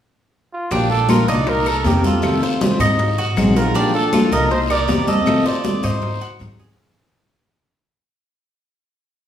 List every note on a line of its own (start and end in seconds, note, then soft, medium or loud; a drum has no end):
0.53 0.73 F4 medium
0.71 1.24 A#1 medium
0.71 0.89 F3 medium
0.71 0.90 A#3 medium
0.71 1.08 D4 medium
0.71 0.90 D4 medium
0.71 0.88 F4 medium
0.71 0.90 G4 loud
0.71 high bongo medium
0.71 high conga soft
0.71 long guiro medium
0.90 1.08 A#3 soft
0.90 1.09 D4 soft
0.90 1.08 F4 medium
0.90 1.11 A4 loud
0.90 high bongo soft
0.90 high conga soft
1.08 1.27 F3 medium
1.08 1.27 A#3 medium
1.08 1.28 D4 medium
1.08 1.28 F4 medium
1.08 1.27 F4 medium
1.08 1.30 A#4 medium
1.08 high bongo medium
1.08 high conga medium
1.08 short guiro medium
1.08 claves medium
1.27 1.81 C2 loud
1.27 1.46 A#3 soft
1.27 1.47 D4 soft
1.27 1.65 D#4 medium
1.27 1.47 F4 medium
1.27 1.50 D5 loud
1.27 high conga soft
1.27 short guiro medium
1.47 1.70 A#4 loud
1.47 muted steel-string acoustic guitar stroke medium
1.47 high bongo medium
1.47 high conga soft
1.47 long guiro medium
1.66 1.89 A4 medium
1.66 2.03 A#4 medium
1.66 high bongo soft
1.66 high conga soft
1.66 claves medium
1.84 2.19 F2 medium
1.84 2.03 C3 medium
1.84 2.04 D#3 medium
1.84 2.04 A#3 medium
1.84 2.03 C4 medium
1.84 2.02 G4 medium
1.84 2.05 G4 medium
1.84 high bongo medium
1.84 low bongo medium
1.84 short guiro medium
2.03 2.23 A#3 soft
2.03 2.23 C4 soft
2.03 2.41 F4 medium
2.03 2.22 G4 soft
2.03 2.41 A4 medium
2.03 high bongo soft
2.03 high conga medium
2.03 short guiro medium
2.22 2.41 C3 medium
2.22 2.41 D#3 medium
2.22 2.42 A3 medium
2.22 2.42 C4 medium
2.22 2.41 F4 medium
2.22 high bongo medium
2.22 high conga soft
2.22 long guiro medium
2.22 claves medium
2.42 2.60 A3 soft
2.42 2.61 C4 soft
2.42 2.61 F4 medium
2.42 2.80 C5 medium
2.42 high bongo soft
2.42 high conga soft
2.61 2.79 C3 medium
2.61 2.80 D#3 medium
2.61 2.80 A3 medium
2.61 2.80 C4 medium
2.61 2.79 F4 medium
2.61 high bongo medium
2.61 high conga loud
2.61 short guiro medium
2.79 3.33 G#2 loud
2.79 2.99 A3 soft
2.79 2.98 C4 soft
2.79 3.17 D#4 medium
2.79 2.98 F4 soft
2.79 high conga medium
2.79 short guiro medium
2.79 claves medium
2.99 muted steel-string acoustic guitar stroke medium
2.99 high bongo medium
2.99 high conga soft
2.99 long guiro medium
3.18 3.55 F#4 medium
3.18 high conga soft
3.36 3.71 A#1 medium
3.36 3.55 D#3 medium
3.36 3.56 F#3 medium
3.36 3.56 C4 medium
3.36 3.55 D#4 medium
3.36 3.54 G#4 medium
3.36 high bongo medium
3.36 low bongo medium
3.36 high conga medium
3.36 short guiro medium
3.36 claves medium
3.56 3.75 C4 soft
3.56 3.75 D#4 soft
3.56 3.77 F4 medium
3.56 3.74 G#4 soft
3.56 3.75 A#4 medium
3.56 high bongo soft
3.56 high conga soft
3.56 short guiro medium
3.74 3.93 F3 medium
3.74 3.94 A#3 medium
3.74 4.12 D4 medium
3.74 3.94 D4 medium
3.74 3.93 F4 loud
3.74 3.94 G4 medium
3.74 high bongo medium
3.74 long guiro medium
3.93 4.12 A#3 soft
3.93 4.13 D4 soft
3.93 4.12 F4 medium
3.93 4.34 A4 loud
3.93 high bongo soft
3.93 high conga soft
4.13 4.32 F3 medium
4.13 4.32 A#3 medium
4.13 4.32 D4 medium
4.13 4.32 F4 medium
4.13 4.30 F4 medium
4.13 high bongo medium
4.13 high conga loud
4.13 short guiro medium
4.13 claves medium
4.31 4.85 C2 medium
4.31 4.50 A#3 soft
4.31 4.51 D4 soft
4.31 4.69 D#4 medium
4.31 4.50 F4 medium
4.31 4.51 A#4 medium
4.31 short guiro medium
4.51 4.60 C5 loud
4.51 muted steel-string acoustic guitar stroke medium
4.51 high bongo medium
4.51 high conga soft
4.51 long guiro medium
4.70 5.07 A#4 medium
4.70 5.10 D5 loud
4.70 high bongo soft
4.70 high conga soft
4.70 claves medium
4.88 5.23 F2 medium
4.88 5.07 C3 medium
4.88 5.07 D#3 medium
4.88 5.07 A#3 medium
4.88 5.07 C4 medium
4.88 5.06 G4 medium
4.88 high bongo medium
4.88 low bongo medium
4.88 high conga soft
4.88 short guiro medium
5.07 5.27 A#3 soft
5.07 5.27 C4 soft
5.07 5.26 G4 soft
5.07 5.45 A4 medium
5.07 5.48 D#5 loud
5.07 high bongo soft
5.07 high conga medium
5.07 short guiro medium
5.26 5.45 C3 medium
5.26 5.45 D#3 medium
5.26 5.45 A3 medium
5.26 5.45 C4 medium
5.26 5.44 F4 medium
5.26 high bongo medium
5.26 high conga soft
5.26 long guiro medium
5.26 claves medium
5.45 5.64 A3 soft
5.45 5.64 C4 soft
5.45 5.64 F4 medium
5.45 5.83 C5 medium
5.45 5.86 D5 loud
5.45 high bongo soft
5.45 high conga soft
5.64 5.83 C3 medium
5.64 5.83 D#3 medium
5.64 5.83 A3 medium
5.64 5.82 C4 medium
5.64 5.81 F4 medium
5.64 high bongo medium
5.64 high conga loud
5.64 short guiro medium
5.83 6.37 G#2 loud
5.83 6.02 A3 soft
5.83 6.01 C4 soft
5.83 6.21 D#4 medium
5.83 6.02 F4 medium
5.83 6.41 C5 loud
5.83 high conga medium
5.83 short guiro medium
5.83 claves medium
6.02 muted steel-string acoustic guitar stroke medium
6.02 high bongo medium
6.02 high conga soft
6.02 long guiro medium
6.21 6.58 F#4 medium
6.21 high conga soft
6.39 6.74 G#2 medium
6.39 6.58 D#3 medium
6.39 6.59 F#3 medium
6.39 6.59 C4 medium
6.39 6.59 D#4 medium
6.39 6.58 G#4 medium
6.39 high bongo medium
6.39 low bongo medium
6.39 high conga medium
6.39 short guiro medium
6.39 claves medium
6.58 6.79 C4 soft
6.58 6.78 D#4 soft
6.58 6.78 G#4 medium
6.58 high bongo soft
6.58 high conga soft
6.58 short guiro medium